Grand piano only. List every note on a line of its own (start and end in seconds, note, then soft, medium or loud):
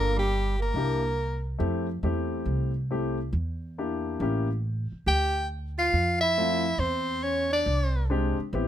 0.00 0.13 A#3 medium
0.00 0.14 D4 medium
0.00 0.14 F4 medium
0.00 0.14 A4 medium
0.75 1.00 A#3 medium
0.75 1.01 D4 soft
0.75 1.01 E4 medium
0.75 1.01 G4 medium
1.59 1.85 A3 medium
1.59 1.86 C4 medium
1.59 1.86 E4 medium
1.59 1.86 G4 medium
2.03 2.70 A3 medium
2.03 2.70 C4 medium
2.03 2.70 E4 medium
2.03 2.70 G4 medium
2.90 3.16 A3 medium
2.90 3.16 C4 medium
2.90 3.17 E4 medium
2.90 3.17 G4 medium
3.78 4.19 A#3 medium
3.78 4.20 D4 soft
3.78 4.20 E4 medium
3.78 4.20 G4 medium
4.21 4.46 A#3 medium
4.21 4.46 C#4 medium
4.21 4.47 E4 medium
4.21 4.47 G4 medium
6.38 6.63 A3 medium
6.38 6.63 C4 medium
6.38 6.63 E4 medium
6.38 6.63 F4 medium
8.10 8.36 G#3 medium
8.10 8.36 C4 medium
8.10 8.36 D4 medium
8.10 8.36 G4 medium
8.54 8.68 B3 medium
8.54 8.68 C4 medium
8.54 8.68 E4 medium
8.54 8.68 G4 medium